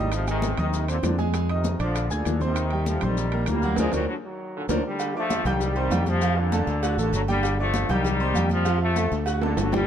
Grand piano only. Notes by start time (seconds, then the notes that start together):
Already playing: D#4 D#5 D#6
0.28 G#3 G#4 G#5
0.57 D#4 D#5 D#6
0.88 C4 C5 C6
1.18 G#3 G#4 G#5
1.34 G#3 G#4 G#5
1.50 D#4 D#5 D#6
1.79 D4 D5 D6
2.10 G#4 G#5 G#6
2.41 C4 C5 C6
2.72 G3 G4 G5
3.03 C4 C5 C6
3.33 A#3 A#4 A#5
3.64 F#3 F#4 F#5
3.80 A#4 C5 D5
3.94 A#4 C5 D5
4.70 A#4 C5 D5
5.17 D4 D5 D6
5.46 G4 G5 G6
5.77 C4 C5 C6
5.92 G3 G4 G5
6.22 F3 F4 F5
6.53 A3 A4 A5
6.84 F#4 F#5 F#6
6.99 A3 A4 A5
7.28 G3 G4 G5
7.60 D4 D5 D6
7.90 G4 G5 G6
8.20 C4 C5 C6
8.36 G3 G4 G5
8.66 F3 F4 F5
8.96 A3 A4 A5
9.27 F#4 F#5 F#6
9.42 A3 A4 A5
9.72 G3 G4 G5